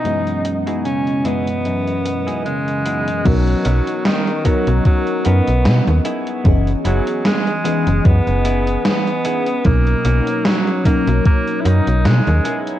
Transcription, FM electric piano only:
X:1
M:4/4
L:1/8
Q:"Swing 16ths" 1/4=75
K:B
V:1 name="FM electric piano"
[F,,E,G,B,Cd]3 [F,,E,G,B,Cd]4- [F,,E,G,B,Cd] | [F,B,CDA]3 [F,B,CDA]4 z | [E,B,CGd]3 [E,B,CGd]4- [E,B,CGd] | [B,,F,CDA]3 [B,,F,CDA]4 z |]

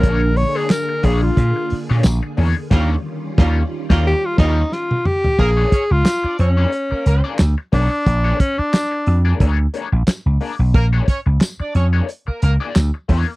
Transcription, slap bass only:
X:1
M:4/4
L:1/16
Q:"Swing 16ths" 1/4=90
K:Bbmix
V:1 name="Slap bass" clef=bass
B,,,3 z3 B,,,2 B,, z2 B,, B,,, z =E,, z | E,,2 z2 E,,2 z E,,2 z E,,2 z4 | B,,,2 z ^C,, z2 F,,2 z2 C,, z D,, z _C,, z | B,,,2 z4 F,,2 D,,2 z B,,, z ^C,, z _C,, |
B,,,2 z ^C,, z2 F,,2 z2 C,, z D,, z =E,, z |]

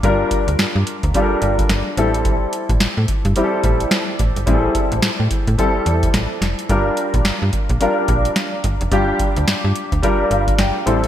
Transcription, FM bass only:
X:1
M:4/4
L:1/16
Q:"Swing 16ths" 1/4=108
K:Gdor
V:1 name="FM bass" clef=bass
G,,,2 z D,, G,, G,, z D,, z2 G,,,2 G,,, z A,,,2- | A,,,2 z A,,, A,, A,, z G,, z2 A,,,2 z2 A,,, G,,, | A,,,2 z A,,, A,, A,, z A,, z2 E,,2 A,,, z F,,, z | G,,,2 z B,,, G,, G,, z B,,, z2 B,,,2 z2 G,,, F,,, |
G,,,2 z D,, G,, G,, z D,, z2 G,,,2 G,,, z A,,,2 |]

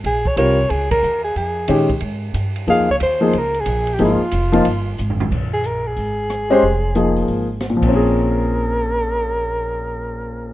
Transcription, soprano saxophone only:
X:1
M:4/4
L:1/8
Q:"Swing" 1/4=182
K:Bbdor
V:1 name="Soprano saxophone"
A d d2 A B2 A | A3 z4 z | f d c2 B A2 G | F6 z2 |
z A B A4- A- | A6 z B- | B8- | B8 |]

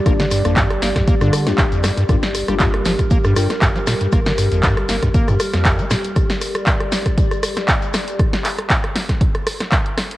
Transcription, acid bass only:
X:1
M:4/4
L:1/16
Q:"Swing 16ths" 1/4=118
K:Gm
V:1 name="Acid bass" clef=bass
B, D, G,, F,, G,, z B, G,, B, D,2 F,, z F,, G,, G,, | G,, z2 G, G,, z F, z B, G,, G,, z G,, F, B,, G,, | B, D, G,, F,, G,, z B, G,, B, F,, z F,,2 B, B,, z | z16 |
z16 |]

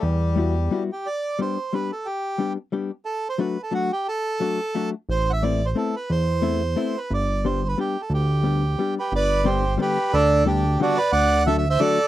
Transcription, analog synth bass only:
X:1
M:3/4
L:1/8
Q:"Swing" 1/4=179
K:Em
V:1 name="Analog synth bass" clef=bass
E,,6 | [K:G] z6 | z6 | z6 |
z6 | A,,,6 | E,,6 | G,,,6 |
D,,6 | G,,,6 | D,,6 | D,,6 |]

